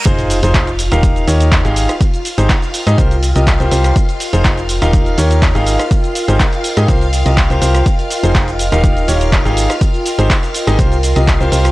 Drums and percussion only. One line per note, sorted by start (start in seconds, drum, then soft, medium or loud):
0.06 kick loud
0.06 closed hi-hat medium
0.06 shaker soft
0.18 closed hi-hat soft
0.18 shaker soft
0.30 snare soft
0.30 open hi-hat loud
0.30 open hi-hat medium
0.30 shaker medium
0.43 closed hi-hat medium
0.43 shaker soft
0.54 kick loud
0.54 snare loud
0.54 clap loud
0.54 closed hi-hat medium
0.54 shaker soft
0.67 closed hi-hat soft
0.67 shaker soft
0.79 closed hi-hat medium
0.79 open hi-hat loud
0.79 shaker medium
0.92 cross-stick medium
0.92 closed hi-hat medium
0.92 shaker soft
1.03 kick loud
1.03 closed hi-hat medium
1.03 shaker soft
1.16 closed hi-hat soft
1.16 shaker soft
1.28 closed hi-hat medium
1.28 open hi-hat loud
1.28 shaker medium
1.40 closed hi-hat medium
1.40 shaker soft
1.52 kick loud
1.52 snare loud
1.52 clap loud
1.52 closed hi-hat medium
1.52 shaker soft
1.65 snare medium
1.65 closed hi-hat soft
1.65 shaker soft
1.76 closed hi-hat medium
1.76 open hi-hat loud
1.76 shaker medium
1.89 cross-stick medium
1.89 closed hi-hat medium
1.89 shaker soft
2.01 kick loud
2.01 closed hi-hat medium
2.01 shaker soft
2.14 closed hi-hat soft
2.14 shaker soft
2.25 closed hi-hat medium
2.25 open hi-hat loud
2.25 shaker medium
2.38 closed hi-hat medium
2.38 shaker soft
2.49 kick loud
2.49 snare loud
2.49 clap loud
2.49 closed hi-hat medium
2.49 shaker soft
2.62 snare soft
2.62 closed hi-hat soft
2.62 shaker soft
2.74 closed hi-hat medium
2.74 open hi-hat loud
2.74 shaker medium
2.87 cross-stick medium
2.87 closed hi-hat soft
2.87 closed hi-hat medium
2.87 shaker soft
2.98 kick loud
2.98 closed hi-hat medium
2.98 shaker soft
3.11 closed hi-hat soft
3.11 shaker soft
3.23 closed hi-hat medium
3.23 open hi-hat loud
3.23 shaker medium
3.36 closed hi-hat medium
3.36 shaker soft
3.47 kick loud
3.47 snare loud
3.47 clap loud
3.47 closed hi-hat medium
3.47 shaker soft
3.60 closed hi-hat soft
3.60 shaker soft
3.71 closed hi-hat medium
3.71 open hi-hat loud
3.71 shaker medium
3.84 cross-stick medium
3.84 snare medium
3.84 closed hi-hat medium
3.84 shaker soft
3.96 kick loud
3.96 closed hi-hat medium
3.96 shaker soft
4.09 closed hi-hat soft
4.09 shaker soft
4.20 snare soft
4.20 open hi-hat loud
4.20 open hi-hat medium
4.20 shaker medium
4.33 closed hi-hat medium
4.33 shaker soft
4.45 kick loud
4.45 snare loud
4.45 clap loud
4.45 closed hi-hat medium
4.45 shaker soft
4.57 closed hi-hat soft
4.57 shaker soft
4.69 closed hi-hat medium
4.69 open hi-hat loud
4.69 shaker medium
4.82 cross-stick medium
4.82 closed hi-hat medium
4.82 shaker soft
4.93 kick loud
4.93 closed hi-hat medium
4.93 shaker soft
5.06 closed hi-hat soft
5.06 shaker soft
5.18 closed hi-hat medium
5.18 open hi-hat loud
5.18 shaker medium
5.31 closed hi-hat medium
5.31 shaker soft
5.42 kick loud
5.42 snare loud
5.42 clap loud
5.42 closed hi-hat medium
5.42 shaker soft
5.55 snare medium
5.55 closed hi-hat soft
5.55 shaker soft
5.66 closed hi-hat medium
5.66 open hi-hat loud
5.66 shaker medium
5.79 cross-stick medium
5.79 closed hi-hat medium
5.79 shaker soft
5.91 kick loud
5.91 closed hi-hat medium
5.91 closed hi-hat soft
5.91 shaker soft
6.04 closed hi-hat soft
6.04 shaker soft
6.15 closed hi-hat medium
6.15 open hi-hat loud
6.15 shaker medium
6.28 closed hi-hat soft
6.28 shaker soft
6.40 kick loud
6.40 snare loud
6.40 clap loud
6.40 closed hi-hat medium
6.40 closed hi-hat soft
6.40 shaker soft
6.53 snare soft
6.53 closed hi-hat soft
6.53 shaker soft
6.64 closed hi-hat medium
6.64 open hi-hat loud
6.64 shaker medium
6.77 cross-stick medium
6.77 closed hi-hat soft
6.77 closed hi-hat medium
6.77 shaker soft
6.88 kick loud
6.88 closed hi-hat medium
6.88 shaker soft
7.01 closed hi-hat soft
7.01 shaker soft
7.13 closed hi-hat medium
7.13 open hi-hat loud
7.13 shaker medium
7.26 closed hi-hat medium
7.26 shaker soft
7.37 kick loud
7.37 snare loud
7.37 clap loud
7.37 closed hi-hat medium
7.37 shaker soft
7.50 closed hi-hat soft
7.50 shaker soft
7.62 closed hi-hat medium
7.62 open hi-hat loud
7.62 shaker medium
7.75 cross-stick medium
7.75 snare medium
7.75 closed hi-hat soft
7.75 shaker soft
7.86 kick loud
7.86 closed hi-hat medium
7.86 shaker soft
7.99 closed hi-hat soft
7.99 shaker soft
8.10 snare soft
8.10 open hi-hat medium
8.10 open hi-hat loud
8.10 shaker medium
8.23 closed hi-hat soft
8.23 shaker soft
8.35 kick loud
8.35 snare loud
8.35 clap loud
8.35 closed hi-hat medium
8.35 closed hi-hat soft
8.35 shaker soft
8.48 closed hi-hat soft
8.48 shaker soft
8.59 closed hi-hat medium
8.59 open hi-hat loud
8.59 shaker medium
8.72 cross-stick medium
8.72 closed hi-hat soft
8.72 shaker soft
8.84 kick loud
8.84 closed hi-hat medium
8.84 shaker soft
8.97 closed hi-hat soft
8.97 shaker soft
9.08 closed hi-hat medium
9.08 open hi-hat loud
9.08 shaker medium
9.21 closed hi-hat medium
9.21 shaker soft
9.32 kick loud
9.32 snare loud
9.32 clap loud
9.32 closed hi-hat medium
9.32 shaker soft
9.45 snare medium
9.45 closed hi-hat soft
9.45 shaker soft
9.57 closed hi-hat medium
9.57 open hi-hat loud
9.57 shaker medium
9.70 cross-stick medium
9.70 closed hi-hat soft
9.70 shaker soft
9.81 kick loud
9.81 closed hi-hat medium
9.81 shaker soft
9.94 closed hi-hat soft
9.94 shaker soft
10.06 closed hi-hat medium
10.06 open hi-hat loud
10.06 shaker medium
10.19 closed hi-hat medium
10.19 shaker soft
10.30 kick loud
10.30 snare loud
10.30 clap loud
10.30 closed hi-hat medium
10.30 shaker soft
10.43 snare soft
10.43 closed hi-hat soft
10.43 shaker soft
10.54 closed hi-hat medium
10.54 open hi-hat loud
10.54 shaker medium
10.67 cross-stick medium
10.67 closed hi-hat soft
10.67 closed hi-hat medium
10.67 shaker soft
10.79 kick loud
10.79 closed hi-hat medium
10.79 shaker soft
10.92 closed hi-hat soft
10.92 shaker soft
11.03 closed hi-hat medium
11.03 open hi-hat loud
11.03 shaker medium
11.16 closed hi-hat medium
11.16 shaker soft
11.28 kick loud
11.28 snare loud
11.28 clap loud
11.28 closed hi-hat medium
11.28 shaker soft
11.41 closed hi-hat soft
11.41 shaker soft
11.52 closed hi-hat medium
11.52 open hi-hat loud
11.52 shaker medium
11.65 cross-stick medium
11.65 snare medium
11.65 closed hi-hat medium
11.65 shaker soft